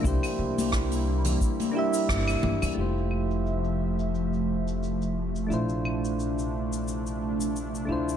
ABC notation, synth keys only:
X:1
M:4/4
L:1/8
Q:"Swing 16ths" 1/4=88
K:F
V:1 name="Synth keys"
[B,DEGc]4- [B,DEGc] [B,DEGe]3 | [A,EFGc]8 | [A,DEFc]6- [A,DEFc] [A,DEFc] |]